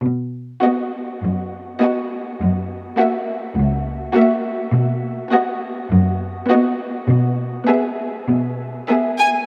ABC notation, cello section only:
X:1
M:4/4
L:1/8
Q:1/4=102
K:B
V:1 name="Cello section" clef=bass
B,,2 z2 F,,2 z2 | F,,2 z2 C,,2 z2 | B,,2 z2 F,,2 z2 | B,,2 z2 B,,2 z2 |]